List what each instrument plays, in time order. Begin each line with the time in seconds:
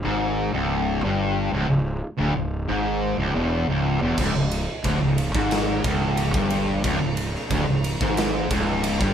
0.05 fingered electric bass G#1, distorted electric guitar G#2
0.54 fingered electric bass C#1, distorted electric guitar C#2
1.04 fingered electric bass G1, distorted electric guitar G2
1.53 fingered electric bass C#1, distorted electric guitar C#2
1.69 fingered electric bass C#1, distorted electric guitar C#2
2.18 fingered electric bass D1, distorted electric guitar D2
2.36 fingered electric bass C#1, distorted electric guitar C#2
2.68 fingered electric bass G#1, distorted electric guitar G#2
3.18 fingered electric bass C#1, distorted electric guitar C#2
3.35 fingered electric bass E1, distorted electric guitar E2
3.69 fingered electric bass C#1, distorted electric guitar C#2
4.02 fingered electric bass E1, distorted electric guitar E2
4.18 fingered electric bass C#1, distorted electric guitar C#2, kick, crash
4.35 fingered electric bass C#1, distorted electric guitar C#2
4.51 ride
4.84 fingered electric bass D1, distorted electric guitar D2, kick, ride
5.02 fingered electric bass C#1, distorted electric guitar C#2
5.18 ride
5.35 fingered electric bass G#1, distorted electric guitar G#2, kick
5.51 snare, ride
5.84 fingered electric bass C#1, distorted electric guitar C#2, kick, ride
6.17 ride
6.34 fingered electric bass G1, distorted electric guitar G2, kick
6.50 ride
6.84 fingered electric bass C#1, distorted electric guitar C#2, kick, ride
7.00 fingered electric bass C#1, distorted electric guitar C#2
7.17 ride
7.35 snare
7.50 fingered electric bass D1, distorted electric guitar D2, kick, ride
7.68 fingered electric bass C#1, distorted electric guitar C#2
7.84 ride
8.01 fingered electric bass G#1, distorted electric guitar G#2, kick
8.17 snare, ride
8.51 fingered electric bass C#1, distorted electric guitar C#2, kick, ride
8.84 ride
9.00 fingered electric bass G1, distorted electric guitar G2, kick